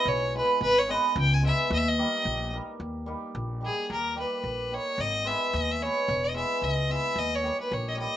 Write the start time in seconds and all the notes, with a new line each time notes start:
Already playing: G#3 D#5
0.05 B1 C#5
0.34 G#3 B3 E4 G#4 B4
0.61 G#1 B4
0.79 C#5
0.88 G#3 B3 D#4 G#4 B4 D#5
1.16 C#2 G5
1.34 G#5
1.42 G#3 B3 D#4 G#4 B4 E5
1.70 D#2 D#5
1.78 E5
1.89 D#5
1.98 G3 A#3 D#4 G4 A#4
2.25 A#1
2.53 G3 A#3 D#4 G4 A#4
2.80 D#2
3.06 G3 A#3 D#4 G4
3.35 A#1
3.61 G3 A#3 D#4 G4
3.66 G#4
3.90 D#2 A#4
4.15 G3 A#3 D#4 G4
4.20 B4
4.44 A#1
4.71 G3 A#3 D#4 G4 C#5
4.98 G#1 D#5
5.24 G#3 B3 D#4 G#4 E5
5.53 D#2 D#5
5.72 E5
5.81 G#3 B3 D#4 G#4 C#5
6.08 E1
6.24 D#5
6.34 G#3 B3 E4 G#4 E5
6.62 C#2 D#5
6.89 G#3 B3 E4 G#4 E5
7.16 D#2 D#5
7.35 C#5
7.42 G3 A#3 D#4 G4
7.60 B4
7.72 A#1 C#5
7.88 C#5 D#5
7.95 G3 A#3 D#4 D#5
7.99 G4 D#5